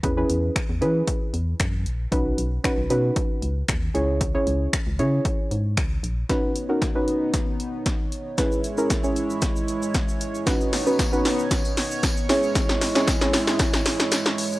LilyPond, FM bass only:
\new Staff \with { instrumentName = "FM bass" } { \clef bass \time 4/4 \key b \major \tempo 4 = 115 e,8 e,8 r16 e,16 e8 r8 e,8 fis,8 ais,,8 | b,,8 b,,8 r16 b,,16 b,8 r8 cis,8 dis,8 cis,8~ | cis,8 cis,8 r16 cis,16 cis8 r8 gis,8 cis,8 ais,,8 | r1 |
r1 | r1 | r1 | }